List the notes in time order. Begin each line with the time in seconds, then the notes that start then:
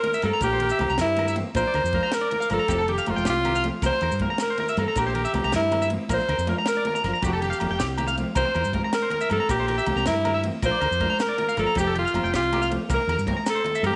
Already playing: A#4
0.03 A#4, ride, muted conga, low conga
0.14 E5, low conga, maracas
0.22 G2 A#3 C4 G4 A4 A#4, ride, high conga, low agogo, maracas
0.33 A#5, low conga
0.41 A#1 G4 A#4, kick, ride, muted conga, low agogo, maracas
0.53 C5
0.60 A#4, ride, low conga
0.69 E5, maracas
0.78 C2 E3 A#3 C4 G4, ride, muted conga, low agogo
0.90 C2 A#5, maracas
0.98 G2 E4 A#4, snare, ride, maracas
1.07 low conga
1.16 A#4, ride, muted conga, low conga, low agogo
1.26 E5, low conga, maracas
1.35 E3 A#3 C4 G4, ride, high conga
1.55 A#1 F3 A#3 D4 F4 A#4 C5, kick, ride, muted conga, low conga, low agogo, maracas
1.67 D5
1.74 D2 A#4, ride, low conga, low agogo
1.84 F2, low conga, maracas
1.92 F3 A#3 D4 F4 A#4, kick, ride, high conga
2.03 A#5, low conga
2.12 A#4, snare, ride, low conga, low agogo, maracas
2.21 D5
2.31 A#4, ride, muted conga, low conga
2.40 F5, low conga, maracas
2.50 G1 F3 A#3 D4 F4 A4 A#4, ride, high conga, low agogo, maracas
2.59 A#5, low conga
2.68 F1 F3 A3 C4 G4, kick, ride, muted conga, low agogo, maracas
2.78 A4
2.88 G4, ride, low conga
2.93 G4
2.98 F5, maracas
3.06 F1 F3 A3 C4, ride, muted conga, high conga, low agogo
3.10 F4
3.16 F1 G5, maracas
3.25 C2 G4, snare, ride, maracas
3.30 F4
3.36 low conga
3.45 G4, ride, muted conga, low conga, low agogo
3.55 F5, low conga, maracas
3.63 F3 A3 C4 G4, ride, high conga
3.82 C2 E3 A#3 C4 G4 A#4 C5, kick, ride, muted conga, low conga, low agogo, maracas
3.93 C5
4.01 E2 A#4, ride, low conga, low agogo
4.12 G2, low conga, maracas
4.19 E3 A#3 C4 G4 A#4, kick, ride, muted conga, high conga
4.30 A#5, low conga
4.38 A#4, snare, ride, low conga, low agogo, maracas
4.50 C5
4.58 A#4, ride, muted conga, low conga
4.69 E5, low conga, maracas
4.76 G2 E3 A#3 C4 G4 A#4, ride, high conga, low agogo, maracas
4.80 A4
4.87 A#5, low conga
4.95 A#1 G4 A#4, kick, ride, muted conga, low agogo, maracas
5.07 C5
5.15 A#4, ride, low conga
5.25 E5, maracas
5.33 C2 E3 A#3 C4 G4, ride, muted conga, high conga, low agogo
5.44 C2 A#5, maracas
5.52 G2 E4 A#4, snare, ride, maracas
5.62 low conga
5.71 muted clean electric guitar stroke, ride, muted conga, low conga, low agogo
5.82 E5, low conga, maracas
5.90 E3 A#3 C4 G4, ride, high conga
6.09 A#1 F3 A#3 D4 F4 A#4, kick, ride, muted conga, low agogo, maracas
6.14 C5
6.20 maracas
6.28 D2 A#4, ride, low conga, low agogo
6.38 F2, maracas
6.47 F3 A#3 D4 F4 A#4, ride, muted conga, high conga, low conga
6.58 A#5
6.66 A#4, snare, ride, low conga, low agogo, maracas
6.76 D5, low conga
6.85 A#4, ride, muted conga, low conga
6.95 A#5, low conga, maracas
7.04 F#1 F3 A#3 D4 A#4, snare, ride, low agogo
7.08 F4
7.13 A#5, low conga, maracas
7.22 F1 F3 A3 C4 G4, kick, ride, muted conga, low agogo, maracas
7.32 A4, low conga
7.42 G4, ride, low conga, maracas
7.50 F5, maracas
7.60 F1 F3 A3 C4 G4, ride, muted conga, high conga, low conga, low agogo
7.70 F1 G5, low conga
7.79 C2 G4, snare, ride, maracas
7.89 low conga
7.98 G4, ride, muted conga, low conga, low agogo, maracas
8.07 F5, low conga, maracas
8.17 F3 A3 C4, ride, high conga, low conga, maracas
8.27 low conga
8.35 C2 E3 A#3 C4 G4 A#4 C5, kick, ride, muted conga, low conga, low agogo, maracas
8.45 C5
8.55 E2 A#4, ride, low conga, low agogo
8.64 G2, low conga, maracas
8.73 E3 A#3 C4 G4 A#4, kick, ride, muted conga, high conga
8.83 A#5, low conga
8.92 A#4, snare, ride, low conga, low agogo, maracas
9.02 C5
9.10 A#4, ride, muted conga, low conga
9.20 E5, low conga, maracas
9.29 G2 E3 A#3 C4 A4 A#4, ride, high conga, low agogo, maracas
9.33 G4
9.40 A#5, low conga
9.49 A#1 G4 A#4, kick, ride, muted conga, low agogo, maracas
9.60 C5
9.68 A#4, ride, low conga
9.78 E5, maracas
9.86 C2 E3 A#3 C4 G4, ride, muted conga, high conga, low agogo
9.96 C2 A#5, maracas
10.06 G2 E4 A#4, snare, ride, maracas
10.16 low conga
10.25 A#4, ride, muted conga, low conga, low agogo
10.34 E5, low conga
10.44 E3 A#3 C4 G4, ride, high conga
10.62 A#1 F3 A#3 D4 F4 A#4 C5, kick, ride, muted conga, low conga, low agogo, maracas
10.71 D5
10.81 D2 A#4, ride, low conga, low agogo
10.91 F2, low conga, maracas
11.00 F3 A#3 D4 F4 A#4, kick, ride, muted conga, high conga
11.10 A#5, low conga
11.19 A#4, snare, ride, low conga, low agogo, maracas
11.29 D5
11.38 A#4, ride, muted conga, low conga
11.48 F5, low conga, maracas
11.57 G1 F3 A#3 D4 F4 A4 A#4, ride, high conga, low agogo, maracas
11.67 A#5, low conga
11.75 F1 F3 A3 G4, muted steel-string acoustic guitar stroke, kick, ride, muted conga, low agogo, maracas
11.81 G4
11.87 A4
11.95 F4 G4, ride, low conga
12.05 F5, maracas
12.14 F1 F3 C4 G4, ride, muted conga, high conga, low agogo
12.23 F1 G5, maracas
12.33 C2 F4 G4, snare, ride, maracas
12.43 low conga
12.53 G4, ride, muted conga, low conga, low agogo
12.62 F5, low conga, maracas
12.70 F3 A3 C4 G4, ride, high conga
12.88 C2 E3 A#3 C4 G4 A#4, kick, ride, muted conga, low conga, low agogo, maracas
12.94 A#4
13.07 E2 A#4, ride, low conga, low agogo
13.18 G2, low conga, maracas
13.26 E3 A#3 C4 G4 A#4, kick, ride, muted conga, high conga
13.37 A#5
13.46 A4, snare, ride, low conga, low agogo, maracas
13.55 C5
13.64 muted clean electric guitar stroke, ride, muted conga, low conga
13.75 E5, low conga, maracas
13.83 G2 E3 A#3 C4 G4 A#4, ride, high conga, low agogo, maracas